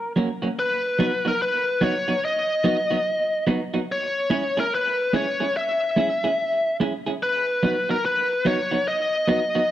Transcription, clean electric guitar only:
0.16 F#3 A#3 C#4 F#4
0.42 F#3 A#3 C#4 F#4
0.99 F#3 B3 D#4 F#4
1.25 F#3 B3 D#4 F#4
1.81 F#3 B3 D#4 F#4
2.08 F#3 B3 D#4 F#4
2.64 F#3 B3 D#4 F#4
2.90 F#3 B3 D#4 F#4
3.47 F#3 B3 D#4 F#4
3.74 F#3 B3 D#4 F#4
4.30 G#3 C#4 E4 G#4
4.57 G#3 C#4 E4 G#4
5.13 G#3 C#4 E4 G#4
5.40 G#3 C#4 E4 G#4
5.96 G#3 C#4 E4 G#4
6.24 G#3 C#4 E4 G#4
6.80 G#3 C#4 E4 G#4
7.06 G#3 C#4 E4 G#4
7.63 F#3 B3 D#4 F#4
7.89 F#3 B3 D#4 F#4
8.45 F#3 B3 D#4 F#4
8.71 F#3 B3 D#4 F#4
9.28 F#3 B3 D#4 F#4
9.55 F#3 B3 D#4 F#4

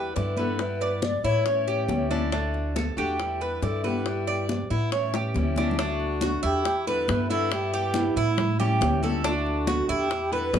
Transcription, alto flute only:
Already playing: G4
0.15 B4
0.59 B4
1.03 D5
1.24 C#5
2.97 G4
3.41 B4
3.64 A4
3.87 G4
5.80 F#4
6.45 G4
6.87 B4
7.30 A4
7.52 G4
7.96 E4
9.26 F#4
9.90 G4
10.32 B4

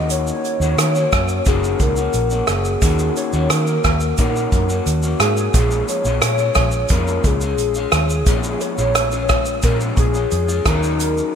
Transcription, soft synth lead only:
Already playing: D#5
0.11 C#5
1.48 G#4
1.81 A#4
2.50 G#4
3.17 C#5
3.52 A#4
4.20 A#4
5.20 G#4
5.89 C#5
6.91 A#4
7.26 G#4
7.93 G#4
8.61 C#5
9.64 A#4
9.99 G#4
10.67 A#4

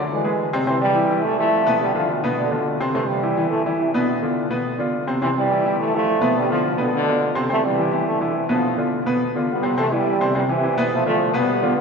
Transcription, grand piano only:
Already playing: D3 D4 D5
0.24 G#3 G#4 B4
0.53 C3 C4 C5
0.67 C3 C4 C5
0.95 E3 E4 G4
1.10 E3 E4 G4
1.38 E3 E4 G4
1.66 B2 B3 B4
1.95 D3 D4 F4
2.24 B2 B3 B4
2.51 D3 D4 F4
2.80 C3 C4 C5
2.95 C3 C4 C5
3.23 E3 E4 G4
3.37 E3 E4 G4
3.66 E3 E4 G4
3.94 B2 B3 B4
4.22 D3 D4 F4
4.50 B2 B3 B4
4.79 D3 D4 F4
5.07 C3 C4 C5
5.22 C3 C4 C5
5.51 E3 E4 G4
5.65 E3 E4 G4
5.93 E3 E4 G4
6.21 B2 B3 B4
6.49 D3 D4 F4
6.77 B2 B3 B4
7.07 D3 D4 F4
7.35 C3 C4 C5
7.49 C3 C4 C5
7.79 E3 E4 G4
7.92 E3 E4 G4
8.21 E3 E4 G4
8.49 B2 B3 B4
8.78 D3 D4 F4
9.06 B2 B3 B4
9.35 D3 D4 F4
9.63 C3 C4 C5
9.77 C3 C4 C5
9.92 E3 E4 G4
10.21 C3 C4 C5
10.35 C3 C4 C5
10.49 E3 E4 G4
10.63 E3 E4 G4
10.77 B2 B3 B4
11.06 D3 D4 F4
11.33 B2 B3 B4
11.62 D3 D4 F4

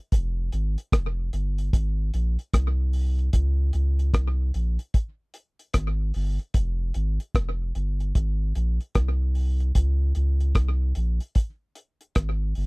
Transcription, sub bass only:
0.13 F1
0.53 G#1
0.93 F1
1.33 G1
1.74 G#1
2.14 A#1
2.54 C2
3.34 C#2
3.74 C#2
4.14 C2
4.55 A#1
5.75 G#1
6.16 G1
6.55 F1
6.96 G#1
7.35 F1
7.75 G1
8.16 G#1
8.56 A#1
8.96 C2
9.76 C#2
10.16 C#2
10.56 C2
10.96 A#1
12.16 G#1
12.57 G1

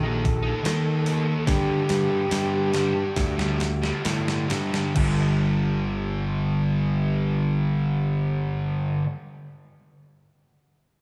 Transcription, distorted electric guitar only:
0.03 A#3 D#4
0.24 muted distorted electric guitar stroke
0.43 A#3 D#4
0.63 D#3 A#3 D#4
1.05 D#3 A#3 D#4
1.25 A#3 D#4
1.45 G2 D3 G3
2.08 D3 G3
2.29 G2 D3 G3
2.72 G2 D3 G3
2.94 muted distorted electric guitar stroke
3.37 D3 G3
3.59 muted distorted electric guitar stroke
3.81 D3 G3
4.03 G2 D3 G3
4.49 G2 D3 G3
4.72 D3 G3
4.95 G2 D3 G3

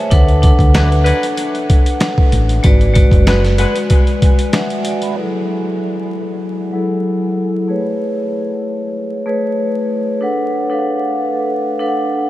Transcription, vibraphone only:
Already playing: C#5 E5 G#5 A5
0.11 D4 A4 B4 F#5
0.42 D4 A4 B4 F#5
2.63 G#3 F#4 B4 D5
2.94 G#3 F#4 B4 D5
4.22 G#5
4.54 D5 E5 F#5
4.87 D5 G#5
5.02 G#5 B5
5.17 F#3 E4 G#4 A4
6.73 F#3 E4 G#4 A4
7.68 A3 G#4 B4 C#5
9.26 A3 G#4 B4 C#5
10.21 D4 A4 B4 F#5
10.70 D4 A4 B4 F5
10.79 F#5
11.79 D4 A4 B4 F5
11.88 F#5

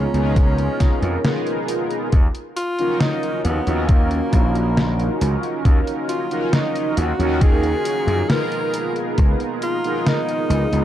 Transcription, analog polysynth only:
0.13 B3 D#4 F4 G#4 A#4
1.24 B3 D#4 F4 G#4 A#4
2.79 C#4 D#4 F4 F#4 A#4
3.65 C#4 D#4 F4 F#4 A#4
6.31 C#4 D#4 F4 F#4 A#4
7.18 C#4 D#4 F4 F#4 A#4
8.28 B3 D#4 F4 G#4 A#4
9.84 B3 D#4 F4 G#4 A#4
10.71 B3 D#4 F4 G#4 A#4

